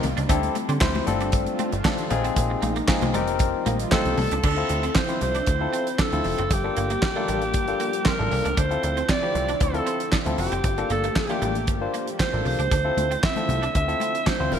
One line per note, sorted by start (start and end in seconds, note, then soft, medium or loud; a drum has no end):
0.00 0.29 D#3 medium
0.00 2.08 G3 medium
0.00 0.28 A#3 medium
0.00 0.28 F4 medium
0.00 muted clean electric guitar stroke soft
0.00 closed hi-hat medium
0.00 high conga medium
0.00 low conga medium
0.04 0.15 C2 medium
0.17 0.27 C#2 medium
0.17 0.24 D4 medium
0.17 closed hi-hat medium
0.29 0.50 D2 loud
0.29 1.07 D3 medium
0.29 0.56 C4 loud
0.29 1.07 C4 medium
0.29 0.38 D4 medium
0.29 0.56 E4 loud
0.29 1.07 E4 medium
0.29 0.56 G4 loud
0.29 0.56 A4 loud
0.29 kick loud
0.29 closed hi-hat loud
0.29 muted conga soft
0.43 closed hi-hat soft
0.55 muted clean electric guitar stroke soft
0.55 closed hi-hat medium
0.55 high conga medium
0.69 0.79 D3 loud
0.69 0.76 C4 medium
0.69 closed hi-hat soft
0.80 1.01 D2 loud
0.80 1.05 C4 medium
0.80 0.90 C4 medium
0.80 1.07 E4 medium
0.80 1.07 G4 medium
0.80 1.07 C5 loud
0.80 kick loud
0.80 snare loud
0.80 clap loud
0.80 muted conga soft
0.95 muted clean electric guitar stroke soft
0.95 high conga medium
1.06 1.47 G1 loud
1.06 3.13 C3 medium
1.06 2.10 A3 medium
1.06 1.70 C4 medium
1.06 1.70 D4 medium
1.06 1.70 F4 medium
1.06 2.10 F4 medium
1.06 1.70 A4 loud
1.06 closed hi-hat medium
1.06 high conga medium
1.06 low conga medium
1.20 1.28 D4 medium
1.20 closed hi-hat soft
1.32 kick loud
1.32 closed hi-hat medium
1.32 muted conga soft
1.46 closed hi-hat soft
1.46 muted conga soft
1.59 1.67 C4 medium
1.59 closed hi-hat medium
1.59 high conga medium
1.72 1.82 G1 medium
1.72 closed hi-hat medium
1.84 2.09 C4 medium
1.84 1.93 D4 medium
1.84 2.11 D4 medium
1.84 2.09 F4 medium
1.84 2.11 A4 loud
1.84 kick loud
1.84 snare loud
1.84 clap medium
1.84 muted conga soft
1.84 high conga medium
1.98 closed hi-hat soft
1.98 muted conga soft
2.10 2.31 A#1 loud
2.10 3.14 G#3 medium
2.10 4.41 A#3 medium
2.10 2.73 C4 loud
2.10 2.73 D#4 medium
2.10 3.14 D#4 medium
2.10 2.74 F4 medium
2.10 2.74 G#4 loud
2.10 muted clean electric guitar stroke soft
2.10 closed hi-hat medium
2.10 high conga medium
2.10 low conga medium
2.24 2.32 C4 medium
2.24 closed hi-hat medium
2.36 2.57 A#1 loud
2.36 kick loud
2.36 closed hi-hat loud
2.36 muted conga soft
2.50 muted clean electric guitar stroke soft
2.62 2.82 A#1 loud
2.62 2.71 A#3 medium
2.62 closed hi-hat medium
2.62 high conga medium
2.76 2.84 A#3 medium
2.76 closed hi-hat soft
2.88 3.12 C4 medium
2.88 3.13 D#4 medium
2.88 3.14 F4 medium
2.88 3.14 G#4 loud
2.88 muted clean electric guitar stroke soft
2.88 kick loud
2.88 snare loud
2.88 clap medium
2.88 muted conga soft
3.01 3.16 C2 loud
3.01 3.10 G#3 medium
3.01 closed hi-hat soft
3.01 high conga medium
3.14 3.54 F1 loud
3.14 4.43 D#3 medium
3.14 3.22 G3 medium
3.14 4.43 G3 medium
3.14 3.77 C4 medium
3.14 3.77 D#4 medium
3.14 4.43 F4 medium
3.14 3.77 G4 medium
3.14 3.77 A#4 loud
3.14 closed hi-hat medium
3.14 high conga medium
3.14 low conga medium
3.27 closed hi-hat soft
3.39 kick loud
3.39 closed hi-hat medium
3.65 3.86 A#1 medium
3.65 3.75 A#3 medium
3.65 3.90 D#5 medium
3.65 closed hi-hat medium
3.65 high conga medium
3.79 closed hi-hat medium
3.91 4.18 C4 medium
3.91 4.01 C4 medium
3.91 4.18 D#4 medium
3.91 4.18 G4 medium
3.91 4.41 A4 medium
3.91 4.18 C5 medium
3.91 4.16 F5 medium
3.91 kick loud
3.91 snare loud
3.91 clap medium
3.91 muted conga soft
3.91 high conga medium
4.05 4.15 C2 loud
4.05 closed hi-hat soft
4.05 muted conga soft
4.17 4.28 C2 loud
4.17 4.42 A5 medium
4.17 muted clean electric guitar stroke soft
4.17 open hi-hat medium
4.17 high conga medium
4.17 low conga medium
4.31 4.41 C#2 medium
4.31 4.39 D4 medium
4.31 closed hi-hat medium
4.43 4.64 D2 loud
4.43 6.49 D3 medium
4.43 14.59 F3 medium
4.43 6.49 C4 medium
4.43 4.52 D4 medium
4.43 6.49 E4 medium
4.43 4.99 A4 loud
4.43 kick loud
4.43 crash medium
4.57 4.83 C4 medium
4.57 4.84 E4 medium
4.57 4.84 F4 medium
4.57 4.84 A4 medium
4.69 4.90 D2 medium
4.69 muted clean electric guitar stroke soft
4.69 closed hi-hat medium
4.83 4.91 C4 medium
4.83 closed hi-hat soft
4.95 5.03 C4 medium
4.95 5.22 C5 medium
4.95 kick loud
4.95 snare loud
4.95 clap medium
5.08 5.35 C4 medium
5.08 5.35 E4 medium
5.08 5.35 F4 medium
5.08 5.36 C5 medium
5.08 muted clean electric guitar stroke soft
5.08 closed hi-hat soft
5.21 5.42 C2 loud
5.21 6.03 C5 loud
5.21 closed hi-hat medium
5.35 5.42 D4 medium
5.35 closed hi-hat soft
5.47 5.67 D2 medium
5.47 kick loud
5.47 closed hi-hat medium
5.61 5.87 C4 medium
5.61 5.87 E4 medium
5.61 5.87 F4 medium
5.61 5.87 A4 medium
5.73 5.81 C4 medium
5.73 closed hi-hat medium
5.87 closed hi-hat medium
5.99 6.07 D4 medium
5.99 6.55 A4 loud
5.99 kick loud
5.99 snare loud
5.99 clap medium
6.12 6.22 D2 loud
6.12 6.39 C4 medium
6.12 6.39 E4 medium
6.12 6.39 F4 medium
6.12 6.39 A4 medium
6.12 closed hi-hat soft
6.24 6.36 F1 medium
6.24 muted clean electric guitar stroke soft
6.24 open hi-hat medium
6.38 6.48 F#1 medium
6.38 6.46 C4 medium
6.38 closed hi-hat medium
6.51 6.71 G1 loud
6.51 8.56 G3 medium
6.51 8.56 A#3 medium
6.51 8.56 G4 medium
6.51 8.09 G4 loud
6.51 kick loud
6.51 closed hi-hat loud
6.64 6.91 A#3 medium
6.64 6.91 D4 medium
6.64 6.91 F4 medium
6.64 6.91 A4 medium
6.64 muted clean electric guitar stroke soft
6.77 6.97 G1 medium
6.77 6.85 A#3 medium
6.77 closed hi-hat medium
6.90 6.98 A#3 medium
6.90 closed hi-hat soft
7.02 muted clean electric guitar stroke soft
7.02 kick loud
7.02 snare loud
7.02 clap medium
7.16 7.23 A3 medium
7.16 7.42 A#3 loud
7.16 7.42 D4 medium
7.16 7.43 F4 medium
7.16 7.43 A4 loud
7.28 7.56 A1 medium
7.28 7.36 G3 medium
7.28 closed hi-hat medium
7.42 closed hi-hat soft
7.54 7.74 G1 medium
7.54 kick loud
7.54 closed hi-hat medium
7.67 7.94 A#3 medium
7.67 7.94 D4 medium
7.67 7.94 F4 medium
7.67 7.94 A4 medium
7.67 closed hi-hat soft
7.80 7.88 A#3 medium
7.80 closed hi-hat medium
7.93 closed hi-hat medium
8.05 8.14 C4 medium
8.05 8.60 A#4 loud
8.05 kick loud
8.05 snare loud
8.05 clap medium
8.19 8.29 A1 medium
8.19 8.45 A#3 medium
8.19 8.46 D4 medium
8.19 8.46 F4 medium
8.19 8.46 A4 loud
8.31 8.43 C2 loud
8.31 muted clean electric guitar stroke soft
8.31 open hi-hat medium
8.45 8.55 C#2 medium
8.45 8.52 D4 medium
8.45 closed hi-hat medium
8.57 8.77 D2 loud
8.57 10.63 D3 medium
8.57 10.63 C4 medium
8.57 8.66 D4 medium
8.57 10.63 E4 medium
8.57 9.10 C5 loud
8.57 kick loud
8.57 closed hi-hat loud
8.70 8.97 C4 medium
8.70 8.97 E4 medium
8.70 8.97 F4 medium
8.70 8.97 A4 medium
8.70 closed hi-hat soft
8.83 9.03 D2 medium
8.83 muted clean electric guitar stroke soft
8.83 closed hi-hat medium
8.97 9.04 C4 medium
8.97 closed hi-hat soft
9.09 9.17 C4 medium
9.09 9.64 D5 loud
9.09 kick loud
9.09 snare loud
9.09 clap medium
9.22 9.49 C4 medium
9.22 9.49 E4 medium
9.22 9.49 F4 medium
9.22 9.49 G4 medium
9.22 muted clean electric guitar stroke soft
9.35 9.55 C2 loud
9.35 closed hi-hat medium
9.48 9.56 D4 medium
9.48 closed hi-hat soft
9.60 9.81 D2 loud
9.60 10.12 A4 loud
9.60 kick loud
9.60 closed hi-hat medium
9.73 10.00 C4 medium
9.73 10.01 E4 medium
9.73 10.01 F4 medium
9.73 10.01 A4 medium
9.73 closed hi-hat soft
9.86 9.95 C4 medium
9.86 closed hi-hat medium
10.00 closed hi-hat medium
10.12 10.21 D4 medium
10.12 kick loud
10.12 snare loud
10.12 clap medium
10.26 10.36 D2 medium
10.26 10.52 C4 medium
10.26 10.53 E4 medium
10.26 10.53 F4 medium
10.26 10.53 A4 loud
10.26 closed hi-hat soft
10.38 10.49 F1 medium
10.38 10.87 G4 medium
10.38 muted clean electric guitar stroke soft
10.38 open hi-hat medium
10.52 10.61 F#1 medium
10.52 10.59 C4 medium
10.52 closed hi-hat medium
10.64 10.84 G1 loud
10.64 12.70 A3 medium
10.64 12.70 A#3 medium
10.64 12.70 G4 medium
10.64 kick loud
10.64 closed hi-hat loud
10.78 11.04 A#3 medium
10.78 11.04 D4 medium
10.78 11.05 F4 medium
10.78 11.05 A4 medium
10.78 muted clean electric guitar stroke soft
10.78 closed hi-hat soft
10.90 11.10 G1 medium
10.90 10.99 A#3 medium
10.90 11.19 A4 loud
10.90 closed hi-hat medium
11.04 11.11 A#3 medium
11.04 closed hi-hat soft
11.16 11.69 G4 medium
11.16 muted clean electric guitar stroke soft
11.16 kick loud
11.16 snare loud
11.16 clap medium
11.29 11.37 A3 medium
11.29 11.56 A#3 medium
11.29 11.56 D4 medium
11.29 11.56 F4 medium
11.29 11.56 G4 medium
11.29 closed hi-hat soft
11.42 11.69 A1 loud
11.42 11.50 G3 medium
11.42 closed hi-hat medium
11.55 closed hi-hat soft
11.67 11.88 G1 loud
11.67 kick loud
11.67 closed hi-hat medium
11.81 12.08 A#3 medium
11.81 12.08 D4 medium
11.81 12.08 F4 medium
11.81 12.08 C5 medium
11.94 12.02 A#3 medium
11.94 closed hi-hat medium
12.07 closed hi-hat medium
12.19 12.28 C4 medium
12.19 12.44 C5 loud
12.19 kick loud
12.19 snare loud
12.19 clap medium
12.33 12.43 A1 medium
12.33 12.59 A#3 medium
12.33 12.60 D4 medium
12.33 12.60 F4 medium
12.33 12.60 A4 medium
12.45 12.56 C2 medium
12.45 13.26 C5 loud
12.45 muted clean electric guitar stroke soft
12.45 open hi-hat medium
12.59 12.69 C#2 medium
12.59 12.66 D4 medium
12.59 closed hi-hat medium
12.71 12.91 D2 loud
12.71 14.59 D3 medium
12.71 14.59 C4 medium
12.71 12.80 D4 medium
12.71 14.59 E4 medium
12.71 kick loud
12.71 closed hi-hat medium
12.71 muted conga soft
12.84 13.11 C4 medium
12.84 13.11 E4 medium
12.84 13.11 F4 medium
12.84 13.11 A4 medium
12.97 13.17 D2 medium
12.97 muted clean electric guitar stroke soft
12.97 closed hi-hat medium
12.97 high conga medium
13.11 13.18 C4 medium
13.11 closed hi-hat soft
13.23 13.31 C4 medium
13.23 13.76 E5 loud
13.23 kick loud
13.23 snare loud
13.23 clap medium
13.23 muted conga soft
13.36 13.63 C4 medium
13.36 13.63 E4 medium
13.36 13.63 F4 medium
13.36 13.63 A4 medium
13.36 muted clean electric guitar stroke soft
13.36 closed hi-hat soft
13.36 high conga medium
13.48 13.69 C2 loud
13.48 closed hi-hat medium
13.48 high conga medium
13.48 low conga medium
13.62 13.70 D4 medium
13.62 closed hi-hat soft
13.75 13.95 D2 medium
13.75 14.29 E5 loud
13.75 kick loud
13.75 closed hi-hat medium
13.88 14.14 C4 medium
13.88 14.15 E4 medium
13.88 14.15 F4 medium
13.88 14.15 A4 medium
13.88 closed hi-hat soft
14.00 14.09 C4 medium
14.00 closed hi-hat medium
14.00 high conga medium
14.15 closed hi-hat medium
14.26 14.34 D4 medium
14.26 14.56 C5 loud
14.26 kick loud
14.26 snare loud
14.26 clap medium
14.26 muted conga soft
14.26 high conga medium
14.39 14.49 D2 loud
14.39 14.59 C4 medium
14.39 14.59 E4 medium
14.39 14.59 F4 medium
14.39 14.59 C5 medium
14.52 14.59 F1 loud
14.52 14.59 A#4 medium
14.52 muted clean electric guitar stroke soft
14.52 open hi-hat medium
14.52 low conga medium